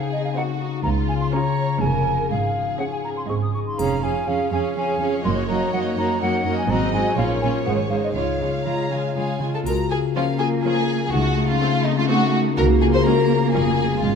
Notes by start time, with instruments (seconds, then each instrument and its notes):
Already playing: harp C#3 C4 D#4, viola section C4 D#4, violin section G#4 A4, flute F5
0.12 harp D#4, flute D#5
0.24 flute F5
0.35 harp A3, viola section C4 D#4, violin section F#4 A4, flute F#5
0.60 harp D#4
0.83 cello section C#2, double bass section C#2, harp C#3, violin section F4, flute A#5
1.09 harp F4, flute G#5
1.21 flute C6
1.32 viola section C#4 F4, harp C#4, violin section G#4 C#5, flute A#5
1.58 harp F4
1.80 double bass section F1, cello section F2, harp F2, viola section C#4 G#4, violin section A#4 C#5, flute G#5
2.06 harp F4 G#4
2.30 double bass section G#1, cello section G#2, harp G#2, violin section G#4, flute F5
2.56 harp F4
2.79 viola section C#4 G#4, harp C#4, violin section C#5, flute F#5
2.91 flute G#5
3.04 harp F4, flute A#5
3.17 flute C6
3.29 double bass section G#1, harp G#2, cello section G#2, viola section C4 G#4, violin section D#5, flute C#6
3.42 flute D#6
3.54 harp D#4 G#4, flute C#6
3.67 flute C6
3.78 double bass section F1, cello section F2, harp F2, viola section C#4 G#4, violin section F5, flute A#5, triangle
4.02 cello section F2, viola section C#4 G#4, harp F4, violin section F5, flute G#5
4.27 cello section F2, viola section C#4 G#4, harp C#4, violin section C#5 F5, flute F5
4.51 cello section F2, viola section C#4 G#4, harp F4, violin section F5, flute G#5
4.75 cello section F2, harp F3, viola section C#4 G#4, violin section F5, flute G#5
5.00 cello section F2, viola section C#4 G#4, harp F4, violin section F5
5.23 double bass section F#1, cello section F#2, harp F#2, viola section A#3 F#4, violin section D#5, flute C6
5.48 cello section F#2, viola section A#3 F#4, harp D#4, violin section D#5, flute A#5
5.72 cello section F#2, harp A#3, viola section A#3 F#4, violin section D#5, flute F#5
5.97 cello section F#2, viola section A#3 F#4, harp D#4, violin section D#5, flute A#5
6.19 cello section F#2, harp F#3, viola section A#3 F#4, violin section D#5, flute F#5
6.44 cello section F#2, viola section A#3 F#4, harp D#4, violin section D#5
6.58 flute G#5
6.69 double bass section G#1, harp G#2, cello section G#2, viola section C4 F#4, violin section D#5, flute A#5
6.93 cello section G#2, viola section C4 F#4, harp D#4 F#4, violin section D#5, flute G#5
7.16 double bass section A#1, cello section A#2, harp A#2, viola section C#4 F4, violin section C#5, flute F5
7.39 cello section A#2, viola section C#4 F4, harp C#4 F4, violin section C#5, flute G#5
7.64 double bass section G#1, harp G#2, cello section G#2, viola section G#3 G#4, violin section C5, flute F#5
7.90 cello section G#2, viola section G#3 G#4, harp D#4 G#4, violin section C5, flute F5
8.03 flute D#5
8.14 double bass section C#2, harp C#3, cello section C#3, viola section G#3 F4, violin section C#5 F5, flute C#5
8.40 cello section C#3, viola section G#3 F4, harp F4, violin section C#5
8.64 cello section C#3, viola section G#3 F4, harp C#4, violin section A#5
8.90 cello section C#3, viola section G#3 F4, harp F4, violin section G#5
9.15 cello section C#3, viola section G#3 F4, harp G#3, marimba F4, violin section G#4 F5 G#5
9.40 cello section C#3, viola section G#3 F4, harp F4, violin section G#5
9.54 marimba F4, violin section A4 A5
9.66 double bass section C#2, harp C#3, marimba F#4, violin section A#4 A#5, triangle
9.90 marimba F4, harp F4, violin section G#4 G#5
10.15 viola section F3 C#4, cello section A#3, marimba C#4, harp C#4, violin section F4 F5
10.38 marimba F4, harp F4, violin section G#4 G#5
10.63 viola section F3 C#4, harp G#3, marimba F4, violin section G#4 G#5
10.89 harp F4
11.05 violin section G#4
11.12 double bass section C#2, harp C#3, cello section A3, marimba D#4, violin section F#4 F#5
11.37 harp D#4
11.48 marimba C#4, violin section F4 F5
11.61 viola section A3 C4, cello section A3, harp C4
11.85 marimba C4, violin section D#4 D#5, harp D#4
11.97 marimba C#4, violin section F4 F5
12.09 viola section A3 C4, harp A3, marimba D#4, violin section F#4 F#5
12.33 harp D#4
12.56 double bass section C#2, harp C#3, cello section A#3, marimba F#4, violin section A#4 A#5
12.80 marimba F4, harp F4, violin section G#4 G#5
12.92 marimba G#4, violin section C5 C6
13.05 viola section G#3 C#4, harp C#4, marimba F#4, violin section A#4 A#5
13.30 harp F4
13.53 double bass section F1, harp F2, viola section G#3 C#4, marimba F4, violin section G#4 G#5
13.78 harp F4 G#4
14.02 double bass section G#1, harp G#2, cello section G#3, marimba C#4, violin section F4 F5